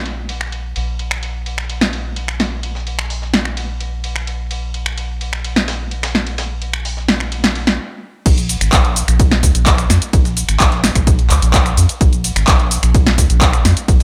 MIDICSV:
0, 0, Header, 1, 3, 480
1, 0, Start_track
1, 0, Key_signature, -5, "minor"
1, 0, Tempo, 468750
1, 776, Time_signature, 4, 2, 24, 8
1, 14367, End_track
2, 0, Start_track
2, 0, Title_t, "Analog synth bass"
2, 0, Program_c, 0, 38
2, 0, Note_on_c, 0, 34, 85
2, 752, Note_off_c, 0, 34, 0
2, 776, Note_on_c, 0, 34, 86
2, 7976, Note_off_c, 0, 34, 0
2, 8456, Note_on_c, 0, 34, 100
2, 8764, Note_off_c, 0, 34, 0
2, 8817, Note_on_c, 0, 32, 98
2, 8904, Note_off_c, 0, 32, 0
2, 8936, Note_on_c, 0, 34, 100
2, 9244, Note_off_c, 0, 34, 0
2, 9297, Note_on_c, 0, 34, 105
2, 9650, Note_off_c, 0, 34, 0
2, 9656, Note_on_c, 0, 37, 93
2, 9744, Note_off_c, 0, 37, 0
2, 9777, Note_on_c, 0, 34, 103
2, 10084, Note_off_c, 0, 34, 0
2, 10136, Note_on_c, 0, 41, 98
2, 10224, Note_off_c, 0, 41, 0
2, 10376, Note_on_c, 0, 34, 102
2, 10685, Note_off_c, 0, 34, 0
2, 10738, Note_on_c, 0, 32, 100
2, 10824, Note_off_c, 0, 32, 0
2, 10857, Note_on_c, 0, 34, 103
2, 11165, Note_off_c, 0, 34, 0
2, 11218, Note_on_c, 0, 34, 106
2, 11569, Note_off_c, 0, 34, 0
2, 11576, Note_on_c, 0, 37, 92
2, 11664, Note_off_c, 0, 37, 0
2, 11697, Note_on_c, 0, 34, 105
2, 12004, Note_off_c, 0, 34, 0
2, 12055, Note_on_c, 0, 41, 102
2, 12144, Note_off_c, 0, 41, 0
2, 12296, Note_on_c, 0, 34, 99
2, 12604, Note_off_c, 0, 34, 0
2, 12657, Note_on_c, 0, 32, 101
2, 12743, Note_off_c, 0, 32, 0
2, 12776, Note_on_c, 0, 34, 100
2, 13085, Note_off_c, 0, 34, 0
2, 13138, Note_on_c, 0, 34, 106
2, 13490, Note_off_c, 0, 34, 0
2, 13496, Note_on_c, 0, 37, 96
2, 13584, Note_off_c, 0, 37, 0
2, 13618, Note_on_c, 0, 34, 101
2, 13925, Note_off_c, 0, 34, 0
2, 13976, Note_on_c, 0, 41, 101
2, 14064, Note_off_c, 0, 41, 0
2, 14216, Note_on_c, 0, 34, 102
2, 14367, Note_off_c, 0, 34, 0
2, 14367, End_track
3, 0, Start_track
3, 0, Title_t, "Drums"
3, 57, Note_on_c, 9, 51, 66
3, 159, Note_off_c, 9, 51, 0
3, 297, Note_on_c, 9, 51, 85
3, 399, Note_off_c, 9, 51, 0
3, 418, Note_on_c, 9, 26, 62
3, 520, Note_off_c, 9, 26, 0
3, 536, Note_on_c, 9, 51, 65
3, 639, Note_off_c, 9, 51, 0
3, 777, Note_on_c, 9, 51, 83
3, 879, Note_off_c, 9, 51, 0
3, 1017, Note_on_c, 9, 51, 66
3, 1119, Note_off_c, 9, 51, 0
3, 1137, Note_on_c, 9, 26, 82
3, 1137, Note_on_c, 9, 51, 41
3, 1239, Note_off_c, 9, 26, 0
3, 1239, Note_off_c, 9, 51, 0
3, 1257, Note_on_c, 9, 51, 79
3, 1359, Note_off_c, 9, 51, 0
3, 1497, Note_on_c, 9, 51, 66
3, 1599, Note_off_c, 9, 51, 0
3, 1617, Note_on_c, 9, 26, 57
3, 1719, Note_off_c, 9, 26, 0
3, 1736, Note_on_c, 9, 51, 82
3, 1838, Note_off_c, 9, 51, 0
3, 1857, Note_on_c, 9, 38, 78
3, 1959, Note_off_c, 9, 38, 0
3, 1976, Note_on_c, 9, 51, 64
3, 2079, Note_off_c, 9, 51, 0
3, 2215, Note_on_c, 9, 51, 81
3, 2318, Note_off_c, 9, 51, 0
3, 2337, Note_on_c, 9, 26, 63
3, 2440, Note_off_c, 9, 26, 0
3, 2455, Note_on_c, 9, 38, 53
3, 2455, Note_on_c, 9, 51, 65
3, 2457, Note_off_c, 9, 38, 0
3, 2457, Note_on_c, 9, 38, 57
3, 2558, Note_off_c, 9, 51, 0
3, 2559, Note_off_c, 9, 38, 0
3, 2695, Note_on_c, 9, 51, 80
3, 2797, Note_off_c, 9, 51, 0
3, 2817, Note_on_c, 9, 38, 42
3, 2920, Note_off_c, 9, 38, 0
3, 2936, Note_on_c, 9, 51, 64
3, 3039, Note_off_c, 9, 51, 0
3, 3058, Note_on_c, 9, 26, 82
3, 3160, Note_off_c, 9, 26, 0
3, 3176, Note_on_c, 9, 46, 76
3, 3278, Note_off_c, 9, 46, 0
3, 3297, Note_on_c, 9, 38, 34
3, 3400, Note_off_c, 9, 38, 0
3, 3415, Note_on_c, 9, 51, 67
3, 3416, Note_on_c, 9, 38, 74
3, 3518, Note_off_c, 9, 38, 0
3, 3518, Note_off_c, 9, 51, 0
3, 3536, Note_on_c, 9, 26, 56
3, 3639, Note_off_c, 9, 26, 0
3, 3656, Note_on_c, 9, 51, 82
3, 3758, Note_off_c, 9, 51, 0
3, 3896, Note_on_c, 9, 51, 63
3, 3999, Note_off_c, 9, 51, 0
3, 4136, Note_on_c, 9, 51, 81
3, 4238, Note_off_c, 9, 51, 0
3, 4256, Note_on_c, 9, 26, 61
3, 4359, Note_off_c, 9, 26, 0
3, 4376, Note_on_c, 9, 51, 63
3, 4479, Note_off_c, 9, 51, 0
3, 4616, Note_on_c, 9, 51, 83
3, 4718, Note_off_c, 9, 51, 0
3, 4856, Note_on_c, 9, 51, 67
3, 4958, Note_off_c, 9, 51, 0
3, 4977, Note_on_c, 9, 26, 76
3, 4977, Note_on_c, 9, 51, 41
3, 5079, Note_off_c, 9, 26, 0
3, 5079, Note_off_c, 9, 51, 0
3, 5095, Note_on_c, 9, 51, 84
3, 5198, Note_off_c, 9, 51, 0
3, 5335, Note_on_c, 9, 51, 65
3, 5438, Note_off_c, 9, 51, 0
3, 5456, Note_on_c, 9, 26, 54
3, 5559, Note_off_c, 9, 26, 0
3, 5576, Note_on_c, 9, 51, 83
3, 5678, Note_off_c, 9, 51, 0
3, 5697, Note_on_c, 9, 38, 75
3, 5799, Note_off_c, 9, 38, 0
3, 5816, Note_on_c, 9, 38, 102
3, 5816, Note_on_c, 9, 51, 75
3, 5918, Note_off_c, 9, 38, 0
3, 5918, Note_off_c, 9, 51, 0
3, 6055, Note_on_c, 9, 51, 57
3, 6158, Note_off_c, 9, 51, 0
3, 6177, Note_on_c, 9, 26, 59
3, 6177, Note_on_c, 9, 38, 97
3, 6177, Note_on_c, 9, 51, 75
3, 6279, Note_off_c, 9, 26, 0
3, 6279, Note_off_c, 9, 38, 0
3, 6279, Note_off_c, 9, 51, 0
3, 6295, Note_on_c, 9, 38, 53
3, 6398, Note_off_c, 9, 38, 0
3, 6416, Note_on_c, 9, 51, 58
3, 6518, Note_off_c, 9, 51, 0
3, 6535, Note_on_c, 9, 38, 97
3, 6535, Note_on_c, 9, 51, 75
3, 6637, Note_off_c, 9, 38, 0
3, 6637, Note_off_c, 9, 51, 0
3, 6775, Note_on_c, 9, 51, 58
3, 6877, Note_off_c, 9, 51, 0
3, 6896, Note_on_c, 9, 26, 77
3, 6999, Note_off_c, 9, 26, 0
3, 7015, Note_on_c, 9, 46, 76
3, 7117, Note_off_c, 9, 46, 0
3, 7137, Note_on_c, 9, 38, 35
3, 7239, Note_off_c, 9, 38, 0
3, 7255, Note_on_c, 9, 38, 76
3, 7255, Note_on_c, 9, 51, 67
3, 7357, Note_off_c, 9, 38, 0
3, 7358, Note_off_c, 9, 51, 0
3, 7376, Note_on_c, 9, 26, 53
3, 7479, Note_off_c, 9, 26, 0
3, 7495, Note_on_c, 9, 51, 82
3, 7597, Note_off_c, 9, 51, 0
3, 7617, Note_on_c, 9, 38, 76
3, 7719, Note_off_c, 9, 38, 0
3, 7735, Note_on_c, 9, 51, 65
3, 7838, Note_off_c, 9, 51, 0
3, 7856, Note_on_c, 9, 38, 74
3, 7958, Note_off_c, 9, 38, 0
3, 8456, Note_on_c, 9, 36, 119
3, 8456, Note_on_c, 9, 42, 56
3, 8456, Note_on_c, 9, 49, 105
3, 8456, Note_on_c, 9, 51, 91
3, 8462, Note_on_c, 9, 82, 45
3, 8558, Note_off_c, 9, 36, 0
3, 8558, Note_off_c, 9, 51, 0
3, 8559, Note_off_c, 9, 42, 0
3, 8559, Note_off_c, 9, 49, 0
3, 8564, Note_off_c, 9, 82, 0
3, 8577, Note_on_c, 9, 42, 28
3, 8583, Note_on_c, 9, 82, 31
3, 8680, Note_off_c, 9, 42, 0
3, 8685, Note_off_c, 9, 82, 0
3, 8697, Note_on_c, 9, 46, 103
3, 8697, Note_on_c, 9, 51, 73
3, 8702, Note_on_c, 9, 82, 75
3, 8799, Note_off_c, 9, 46, 0
3, 8799, Note_off_c, 9, 51, 0
3, 8804, Note_off_c, 9, 82, 0
3, 8818, Note_on_c, 9, 26, 84
3, 8818, Note_on_c, 9, 42, 56
3, 8818, Note_on_c, 9, 51, 44
3, 8823, Note_on_c, 9, 82, 35
3, 8921, Note_off_c, 9, 26, 0
3, 8921, Note_off_c, 9, 42, 0
3, 8921, Note_off_c, 9, 51, 0
3, 8926, Note_off_c, 9, 82, 0
3, 8936, Note_on_c, 9, 36, 115
3, 8937, Note_on_c, 9, 38, 118
3, 8937, Note_on_c, 9, 39, 127
3, 8937, Note_on_c, 9, 42, 54
3, 8937, Note_on_c, 9, 51, 87
3, 8942, Note_on_c, 9, 82, 47
3, 9039, Note_off_c, 9, 36, 0
3, 9039, Note_off_c, 9, 38, 0
3, 9039, Note_off_c, 9, 51, 0
3, 9040, Note_off_c, 9, 39, 0
3, 9040, Note_off_c, 9, 42, 0
3, 9045, Note_off_c, 9, 82, 0
3, 9058, Note_on_c, 9, 42, 28
3, 9161, Note_off_c, 9, 42, 0
3, 9176, Note_on_c, 9, 51, 72
3, 9177, Note_on_c, 9, 46, 92
3, 9182, Note_on_c, 9, 82, 79
3, 9278, Note_off_c, 9, 51, 0
3, 9279, Note_off_c, 9, 46, 0
3, 9285, Note_off_c, 9, 82, 0
3, 9299, Note_on_c, 9, 26, 60
3, 9299, Note_on_c, 9, 42, 53
3, 9304, Note_on_c, 9, 82, 34
3, 9401, Note_off_c, 9, 26, 0
3, 9401, Note_off_c, 9, 42, 0
3, 9406, Note_off_c, 9, 82, 0
3, 9415, Note_on_c, 9, 51, 90
3, 9416, Note_on_c, 9, 36, 122
3, 9417, Note_on_c, 9, 42, 58
3, 9422, Note_on_c, 9, 82, 47
3, 9517, Note_off_c, 9, 51, 0
3, 9519, Note_off_c, 9, 36, 0
3, 9519, Note_off_c, 9, 42, 0
3, 9524, Note_off_c, 9, 82, 0
3, 9538, Note_on_c, 9, 38, 86
3, 9538, Note_on_c, 9, 42, 29
3, 9640, Note_off_c, 9, 38, 0
3, 9640, Note_off_c, 9, 42, 0
3, 9656, Note_on_c, 9, 46, 107
3, 9656, Note_on_c, 9, 51, 69
3, 9657, Note_on_c, 9, 36, 64
3, 9661, Note_on_c, 9, 82, 77
3, 9758, Note_off_c, 9, 51, 0
3, 9759, Note_off_c, 9, 36, 0
3, 9759, Note_off_c, 9, 46, 0
3, 9764, Note_off_c, 9, 82, 0
3, 9778, Note_on_c, 9, 42, 54
3, 9783, Note_on_c, 9, 82, 34
3, 9881, Note_off_c, 9, 42, 0
3, 9886, Note_off_c, 9, 82, 0
3, 9895, Note_on_c, 9, 38, 116
3, 9895, Note_on_c, 9, 51, 90
3, 9896, Note_on_c, 9, 36, 122
3, 9897, Note_on_c, 9, 42, 58
3, 9898, Note_on_c, 9, 39, 127
3, 9903, Note_on_c, 9, 82, 47
3, 9997, Note_off_c, 9, 38, 0
3, 9997, Note_off_c, 9, 51, 0
3, 9999, Note_off_c, 9, 36, 0
3, 10000, Note_off_c, 9, 39, 0
3, 10000, Note_off_c, 9, 42, 0
3, 10005, Note_off_c, 9, 82, 0
3, 10018, Note_on_c, 9, 26, 63
3, 10018, Note_on_c, 9, 42, 28
3, 10023, Note_on_c, 9, 82, 31
3, 10120, Note_off_c, 9, 26, 0
3, 10120, Note_off_c, 9, 42, 0
3, 10126, Note_off_c, 9, 82, 0
3, 10135, Note_on_c, 9, 38, 57
3, 10135, Note_on_c, 9, 51, 69
3, 10137, Note_off_c, 9, 38, 0
3, 10137, Note_on_c, 9, 38, 62
3, 10137, Note_on_c, 9, 46, 91
3, 10142, Note_on_c, 9, 82, 79
3, 10238, Note_off_c, 9, 51, 0
3, 10240, Note_off_c, 9, 38, 0
3, 10240, Note_off_c, 9, 46, 0
3, 10245, Note_off_c, 9, 82, 0
3, 10259, Note_on_c, 9, 42, 57
3, 10264, Note_on_c, 9, 82, 35
3, 10361, Note_off_c, 9, 42, 0
3, 10366, Note_off_c, 9, 82, 0
3, 10375, Note_on_c, 9, 51, 89
3, 10376, Note_on_c, 9, 36, 126
3, 10377, Note_on_c, 9, 42, 53
3, 10382, Note_on_c, 9, 82, 43
3, 10478, Note_off_c, 9, 51, 0
3, 10479, Note_off_c, 9, 36, 0
3, 10479, Note_off_c, 9, 42, 0
3, 10484, Note_off_c, 9, 82, 0
3, 10498, Note_on_c, 9, 38, 44
3, 10498, Note_on_c, 9, 42, 26
3, 10503, Note_on_c, 9, 82, 30
3, 10600, Note_off_c, 9, 38, 0
3, 10600, Note_off_c, 9, 42, 0
3, 10606, Note_off_c, 9, 82, 0
3, 10616, Note_on_c, 9, 46, 108
3, 10616, Note_on_c, 9, 51, 70
3, 10621, Note_on_c, 9, 82, 74
3, 10718, Note_off_c, 9, 51, 0
3, 10719, Note_off_c, 9, 46, 0
3, 10724, Note_off_c, 9, 82, 0
3, 10737, Note_on_c, 9, 26, 84
3, 10737, Note_on_c, 9, 42, 55
3, 10742, Note_on_c, 9, 82, 33
3, 10840, Note_off_c, 9, 26, 0
3, 10840, Note_off_c, 9, 42, 0
3, 10845, Note_off_c, 9, 82, 0
3, 10856, Note_on_c, 9, 36, 119
3, 10856, Note_on_c, 9, 38, 117
3, 10856, Note_on_c, 9, 46, 82
3, 10857, Note_on_c, 9, 39, 126
3, 10857, Note_on_c, 9, 42, 54
3, 10862, Note_on_c, 9, 82, 45
3, 10959, Note_off_c, 9, 36, 0
3, 10959, Note_off_c, 9, 38, 0
3, 10959, Note_off_c, 9, 39, 0
3, 10959, Note_off_c, 9, 42, 0
3, 10959, Note_off_c, 9, 46, 0
3, 10964, Note_off_c, 9, 82, 0
3, 10977, Note_on_c, 9, 42, 27
3, 10978, Note_on_c, 9, 38, 36
3, 11080, Note_off_c, 9, 38, 0
3, 11080, Note_off_c, 9, 42, 0
3, 11096, Note_on_c, 9, 38, 89
3, 11096, Note_on_c, 9, 46, 96
3, 11097, Note_on_c, 9, 51, 74
3, 11101, Note_on_c, 9, 82, 77
3, 11199, Note_off_c, 9, 38, 0
3, 11199, Note_off_c, 9, 46, 0
3, 11200, Note_off_c, 9, 51, 0
3, 11204, Note_off_c, 9, 82, 0
3, 11217, Note_on_c, 9, 26, 60
3, 11217, Note_on_c, 9, 36, 65
3, 11217, Note_on_c, 9, 42, 54
3, 11222, Note_on_c, 9, 82, 32
3, 11320, Note_off_c, 9, 26, 0
3, 11320, Note_off_c, 9, 36, 0
3, 11320, Note_off_c, 9, 42, 0
3, 11325, Note_off_c, 9, 82, 0
3, 11336, Note_on_c, 9, 36, 127
3, 11337, Note_on_c, 9, 42, 56
3, 11337, Note_on_c, 9, 51, 88
3, 11342, Note_on_c, 9, 82, 46
3, 11439, Note_off_c, 9, 36, 0
3, 11439, Note_off_c, 9, 42, 0
3, 11440, Note_off_c, 9, 51, 0
3, 11444, Note_off_c, 9, 82, 0
3, 11456, Note_on_c, 9, 42, 28
3, 11559, Note_off_c, 9, 42, 0
3, 11575, Note_on_c, 9, 39, 66
3, 11575, Note_on_c, 9, 46, 109
3, 11577, Note_on_c, 9, 51, 68
3, 11580, Note_on_c, 9, 82, 75
3, 11678, Note_off_c, 9, 39, 0
3, 11678, Note_off_c, 9, 46, 0
3, 11679, Note_off_c, 9, 51, 0
3, 11683, Note_off_c, 9, 82, 0
3, 11698, Note_on_c, 9, 42, 54
3, 11703, Note_on_c, 9, 82, 33
3, 11800, Note_off_c, 9, 42, 0
3, 11805, Note_off_c, 9, 82, 0
3, 11816, Note_on_c, 9, 36, 127
3, 11816, Note_on_c, 9, 38, 117
3, 11816, Note_on_c, 9, 42, 55
3, 11816, Note_on_c, 9, 51, 88
3, 11817, Note_on_c, 9, 39, 127
3, 11822, Note_on_c, 9, 82, 44
3, 11919, Note_off_c, 9, 36, 0
3, 11919, Note_off_c, 9, 38, 0
3, 11919, Note_off_c, 9, 39, 0
3, 11919, Note_off_c, 9, 42, 0
3, 11919, Note_off_c, 9, 51, 0
3, 11924, Note_off_c, 9, 82, 0
3, 11938, Note_on_c, 9, 26, 67
3, 11938, Note_on_c, 9, 42, 27
3, 11943, Note_on_c, 9, 82, 31
3, 12040, Note_off_c, 9, 26, 0
3, 12040, Note_off_c, 9, 42, 0
3, 12045, Note_off_c, 9, 82, 0
3, 12056, Note_on_c, 9, 46, 97
3, 12056, Note_on_c, 9, 51, 70
3, 12062, Note_on_c, 9, 82, 74
3, 12159, Note_off_c, 9, 46, 0
3, 12159, Note_off_c, 9, 51, 0
3, 12164, Note_off_c, 9, 82, 0
3, 12177, Note_on_c, 9, 42, 53
3, 12183, Note_on_c, 9, 82, 33
3, 12280, Note_off_c, 9, 42, 0
3, 12285, Note_off_c, 9, 82, 0
3, 12296, Note_on_c, 9, 36, 127
3, 12296, Note_on_c, 9, 42, 52
3, 12296, Note_on_c, 9, 51, 88
3, 12302, Note_on_c, 9, 82, 42
3, 12398, Note_off_c, 9, 51, 0
3, 12399, Note_off_c, 9, 36, 0
3, 12399, Note_off_c, 9, 42, 0
3, 12404, Note_off_c, 9, 82, 0
3, 12417, Note_on_c, 9, 42, 26
3, 12422, Note_on_c, 9, 82, 29
3, 12520, Note_off_c, 9, 42, 0
3, 12525, Note_off_c, 9, 82, 0
3, 12536, Note_on_c, 9, 46, 112
3, 12536, Note_on_c, 9, 51, 74
3, 12541, Note_on_c, 9, 82, 72
3, 12638, Note_off_c, 9, 46, 0
3, 12639, Note_off_c, 9, 51, 0
3, 12644, Note_off_c, 9, 82, 0
3, 12657, Note_on_c, 9, 26, 90
3, 12657, Note_on_c, 9, 42, 52
3, 12658, Note_on_c, 9, 51, 45
3, 12662, Note_on_c, 9, 82, 33
3, 12760, Note_off_c, 9, 26, 0
3, 12760, Note_off_c, 9, 42, 0
3, 12761, Note_off_c, 9, 51, 0
3, 12765, Note_off_c, 9, 82, 0
3, 12776, Note_on_c, 9, 36, 127
3, 12776, Note_on_c, 9, 38, 121
3, 12776, Note_on_c, 9, 39, 121
3, 12776, Note_on_c, 9, 42, 54
3, 12776, Note_on_c, 9, 51, 88
3, 12781, Note_on_c, 9, 82, 44
3, 12878, Note_off_c, 9, 42, 0
3, 12879, Note_off_c, 9, 36, 0
3, 12879, Note_off_c, 9, 38, 0
3, 12879, Note_off_c, 9, 39, 0
3, 12879, Note_off_c, 9, 51, 0
3, 12884, Note_off_c, 9, 82, 0
3, 12897, Note_on_c, 9, 42, 26
3, 13000, Note_off_c, 9, 42, 0
3, 13016, Note_on_c, 9, 46, 99
3, 13017, Note_on_c, 9, 51, 73
3, 13021, Note_on_c, 9, 82, 76
3, 13118, Note_off_c, 9, 46, 0
3, 13120, Note_off_c, 9, 51, 0
3, 13123, Note_off_c, 9, 82, 0
3, 13137, Note_on_c, 9, 26, 64
3, 13137, Note_on_c, 9, 42, 53
3, 13142, Note_on_c, 9, 82, 31
3, 13240, Note_off_c, 9, 26, 0
3, 13240, Note_off_c, 9, 42, 0
3, 13245, Note_off_c, 9, 82, 0
3, 13256, Note_on_c, 9, 36, 127
3, 13256, Note_on_c, 9, 42, 53
3, 13257, Note_on_c, 9, 51, 88
3, 13261, Note_on_c, 9, 82, 45
3, 13358, Note_off_c, 9, 42, 0
3, 13359, Note_off_c, 9, 36, 0
3, 13360, Note_off_c, 9, 51, 0
3, 13363, Note_off_c, 9, 82, 0
3, 13378, Note_on_c, 9, 38, 90
3, 13378, Note_on_c, 9, 42, 26
3, 13481, Note_off_c, 9, 38, 0
3, 13481, Note_off_c, 9, 42, 0
3, 13496, Note_on_c, 9, 36, 66
3, 13497, Note_on_c, 9, 46, 112
3, 13498, Note_on_c, 9, 51, 71
3, 13502, Note_on_c, 9, 82, 76
3, 13599, Note_off_c, 9, 36, 0
3, 13599, Note_off_c, 9, 46, 0
3, 13600, Note_off_c, 9, 51, 0
3, 13604, Note_off_c, 9, 82, 0
3, 13618, Note_on_c, 9, 42, 52
3, 13623, Note_on_c, 9, 82, 32
3, 13720, Note_off_c, 9, 42, 0
3, 13725, Note_off_c, 9, 82, 0
3, 13737, Note_on_c, 9, 36, 127
3, 13737, Note_on_c, 9, 38, 118
3, 13737, Note_on_c, 9, 39, 124
3, 13737, Note_on_c, 9, 42, 54
3, 13737, Note_on_c, 9, 51, 89
3, 13742, Note_on_c, 9, 82, 46
3, 13839, Note_off_c, 9, 36, 0
3, 13839, Note_off_c, 9, 38, 0
3, 13839, Note_off_c, 9, 51, 0
3, 13840, Note_off_c, 9, 39, 0
3, 13840, Note_off_c, 9, 42, 0
3, 13845, Note_off_c, 9, 82, 0
3, 13859, Note_on_c, 9, 26, 67
3, 13859, Note_on_c, 9, 42, 27
3, 13864, Note_on_c, 9, 82, 30
3, 13962, Note_off_c, 9, 26, 0
3, 13962, Note_off_c, 9, 42, 0
3, 13967, Note_off_c, 9, 82, 0
3, 13977, Note_on_c, 9, 38, 59
3, 13977, Note_on_c, 9, 51, 71
3, 13978, Note_off_c, 9, 38, 0
3, 13978, Note_on_c, 9, 38, 66
3, 13978, Note_on_c, 9, 46, 98
3, 13983, Note_on_c, 9, 82, 74
3, 14079, Note_off_c, 9, 51, 0
3, 14080, Note_off_c, 9, 38, 0
3, 14080, Note_off_c, 9, 46, 0
3, 14085, Note_off_c, 9, 82, 0
3, 14098, Note_on_c, 9, 42, 52
3, 14103, Note_on_c, 9, 82, 33
3, 14201, Note_off_c, 9, 42, 0
3, 14206, Note_off_c, 9, 82, 0
3, 14216, Note_on_c, 9, 36, 122
3, 14217, Note_on_c, 9, 51, 88
3, 14218, Note_on_c, 9, 42, 49
3, 14223, Note_on_c, 9, 82, 43
3, 14319, Note_off_c, 9, 36, 0
3, 14320, Note_off_c, 9, 42, 0
3, 14320, Note_off_c, 9, 51, 0
3, 14325, Note_off_c, 9, 82, 0
3, 14367, End_track
0, 0, End_of_file